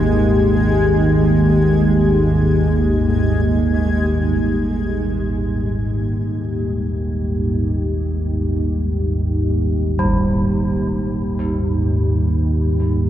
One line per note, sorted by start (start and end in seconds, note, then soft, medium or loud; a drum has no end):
0.00 4.36 G#1 medium
0.00 4.36 D#2 medium
0.00 13.10 G#2 medium
0.00 4.39 G#3 medium
0.00 13.10 A#3 medium
0.00 13.10 D#4 medium
0.00 13.10 G4 medium
0.00 4.39 G#6 medium
3.74 9.42 A#3 medium
4.37 13.10 G#1 medium
4.37 13.10 D#2 medium
9.99 13.10 G3 soft
10.04 impact medium